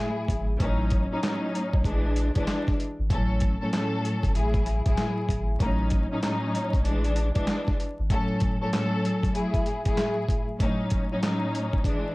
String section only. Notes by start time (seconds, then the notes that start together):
Already playing: A2 F#3 E4 G#4
0.59 A2 F#3 C#4 D#4
1.11 A2 F#3 C#4 D#4
1.22 A2 F#3 C#4 D#4
1.84 E3 G#3 D4
2.35 E3 G#3 D4
3.11 A2 F#3 C#4 A4
3.60 A2 F#3 C#4 A4
3.73 A2 F#3 C#4 A4
4.34 A2 F#3 E4 G#4
4.85 A2 F#3 E4 G#4
5.59 A2 F#3 C#4 D#4
6.11 A2 F#3 C#4 D#4
6.22 A2 F#3 C#4 D#4
6.84 E3 G#3 D4
7.35 E3 G#3 D4
8.11 A2 F#3 C#4 A4
8.60 A2 F#3 C#4 A4
8.73 A2 F#3 C#4 A4
9.34 A2 F#3 E4 G#4
9.86 A2 F#3 E4 G#4
10.60 A2 F#3 C#4 D#4
11.11 A2 F#3 C#4 D#4
11.22 A2 F#3 C#4 D#4
11.84 E3 G#3 D4